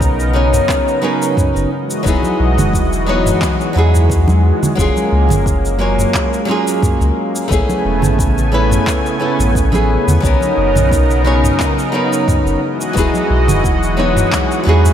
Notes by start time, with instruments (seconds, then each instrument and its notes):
Already playing: sub bass B1, analog synth pad C#3 B3 D#4 A#4, nylon-string guitar F#3 B3 C#4 D#4 A#4
0.01 kick, shaker
0.20 shaker
0.33 nylon-string guitar F#3 B3 C#4 D#4 C#5
0.53 mid tom, shaker
0.69 kick, clap, shaker
0.88 shaker
1.02 nylon-string guitar F#3 B3 C#4 D#4 A#4
1.22 shaker
1.37 kick, mid tom, shaker
1.55 sub bass F#1, shaker
1.71 analog synth pad E3 G#3 F#4 D#5
1.90 shaker
2.03 sub bass E1, nylon-string guitar F#3 B3 D#4, kick, shaker
2.07 nylon-string guitar E4 G#4
2.23 high conga, shaker
2.40 sub bass B1
2.58 sub bass E1, mid tom, low conga, shaker
2.73 kick, shaker
2.93 shaker
3.06 nylon-string guitar F#3 B3 D#4 E4 C#5
3.26 mid tom, shaker
3.42 kick, clap, shaker
3.61 shaker
3.73 sub bass E2, nylon-string guitar F#3 B3 D#4
3.77 nylon-string guitar E4 G#4
3.94 mid tom, shaker
4.10 kick, shaker
4.28 high conga, shaker
4.63 low conga, shaker
4.75 sub bass F#1, nylon-string guitar F#3 A#3 C#4, analog synth pad A#3, kick, shaker
4.79 nylon-string guitar F4 G#4
4.96 high conga, shaker
5.12 sub bass C#2
5.29 sub bass F#1, mid tom, high conga, low conga, shaker
5.46 kick, shaker
5.65 shaker
5.79 nylon-string guitar F#3 A#3 C#4 F4 C#5
5.98 mid tom, shaker
6.14 kick, clap, shaker
6.34 shaker
6.45 nylon-string guitar F#3 A#3 C#4
6.49 nylon-string guitar F4 G#4
6.67 shaker
6.82 kick, mid tom, shaker
7.01 sub bass C#2, shaker
7.36 shaker
7.48 sub bass A1, analog synth pad C#3 A3 B3 G#5, nylon-string guitar A3 B3 C#4, kick
7.52 nylon-string guitar E4 G#4, shaker
7.69 high conga, shaker
7.85 sub bass E1
8.02 sub bass A1, mid tom, low conga, shaker
8.19 kick, shaker
8.38 shaker
8.52 nylon-string guitar A3 B3 C#4 E4 B4
8.71 mid tom, shaker
8.87 kick, clap, shaker
9.06 shaker
9.19 nylon-string guitar A3 B3 C#4 E4 A4
9.39 sub bass A1, mid tom, shaker
9.55 kick, shaker
9.72 nylon-string guitar A3 B3 C#4 E4 G#4, high conga, shaker
10.07 sub bass E2, low conga, shaker
10.20 sub bass B1, analog synth pad C#3 D#4 A#4, nylon-string guitar F#3 B3 C#4, kick
10.25 nylon-string guitar D#4 A#4, shaker
10.41 high conga, shaker
10.57 sub bass F#1
10.75 sub bass B1, mid tom, high conga, low conga, shaker
10.91 kick, shaker
11.11 shaker
11.24 nylon-string guitar F#3 B3 C#4 D#4 C#5
11.44 mid tom, shaker
11.60 kick, clap, shaker
11.79 shaker
11.92 nylon-string guitar F#3 B3 C#4 D#4 A#4
12.13 shaker
12.28 kick, mid tom, shaker
12.46 sub bass F#1, shaker
12.62 analog synth pad E3 G#3 F#4 D#5
12.81 shaker
12.93 sub bass E1, nylon-string guitar F#3 B3 D#4 E4, kick, shaker
12.99 nylon-string guitar G#4
13.14 high conga, shaker
13.30 sub bass B1
13.48 sub bass E1, mid tom, low conga, shaker
13.64 kick, shaker
13.83 shaker
13.97 nylon-string guitar F#3 B3 D#4 E4 C#5
14.16 mid tom, shaker
14.32 kick, clap, shaker
14.52 shaker
14.63 sub bass E2, nylon-string guitar F#3 B3 D#4
14.68 nylon-string guitar E4 G#4
14.85 mid tom, shaker